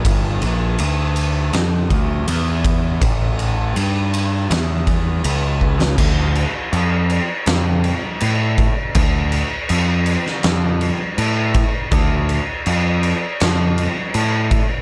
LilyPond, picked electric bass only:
\new Staff \with { instrumentName = "Picked electric bass" } { \clef bass \time 4/4 \key a \phrygian \tempo 4 = 81 g,,8 bes,,8 d,4 f,8 d,8 e,4 | a,,4 g,4 e,4 cis,4 | \key d \minor d,4 f,4 f,4 a,4 | d,4 f,4 f,4 a,4 |
d,4 f,4 f,4 a,4 | }